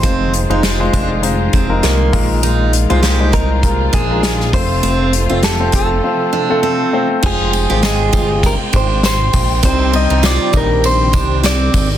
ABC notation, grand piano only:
X:1
M:4/4
L:1/16
Q:"Swing 16ths" 1/4=100
K:Fdor
V:1 name="Grand piano"
[A,EFc]2 z [A,EFc]2 [A,EFc]2 z [A,EFc]2 z [A,EFB]2 z [A,EFB]2- | [A,EFB]2 z [A,EFc]2 [A,EFc]2 z [A,EFB]2 z [A,EFB]2 z [=A,CFc]2- | [=A,CFc]2 z [A,CFc]2 [A,CFc]2 z [A,CFc]2 z [A,CF=A]2 z [A,CFc]2 | [A,c]2 z [A,FGc] [A,Feg]6- [A,Feg] z4 z |
[G,DEc]2 [G,CEc]3 z [E,G,Dc]6- [E,G,Dc] z3 |]
V:2 name="Grand piano" clef=bass
z12 z2 B,,2- | B,,4 z12 | z16 | z16 |
C,6 z8 z2 |]